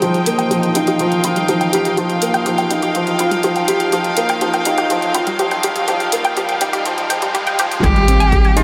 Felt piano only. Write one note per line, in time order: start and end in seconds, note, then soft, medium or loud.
0.03 0.17 F3 medium
0.27 0.50 A#3 medium
0.51 0.74 F3 medium
0.76 0.90 D#4 medium
1.00 1.14 F3 medium
1.24 1.48 F4 medium
1.49 1.72 F3 medium
1.74 1.97 G4 medium
1.98 2.12 F3 medium
2.22 2.45 A#3 medium
2.46 2.70 F3 medium
2.71 2.85 D#4 medium
2.95 3.09 F3 medium
3.20 3.43 F4 medium
3.44 3.67 F3 medium
3.68 3.91 G4 medium
3.92 4.07 F3 medium
4.17 4.40 A#3 medium
4.41 4.65 F3 medium
4.66 4.80 D#4 medium
4.91 5.05 F3 medium
5.15 5.38 F4 medium
5.40 5.63 F3 medium
5.64 5.87 G4 medium
5.87 6.02 F3 medium
6.13 6.36 A#3 medium
6.37 6.60 F3 medium
6.61 6.75 D#4 medium
6.86 7.00 F3 medium
7.10 7.33 F3 medium
7.34 7.57 G3 medium
7.59 7.82 F3 medium
7.83 8.06 G3 medium
8.08 8.22 C4 medium
8.32 8.55 G3 medium
8.57 8.63 D#4 loud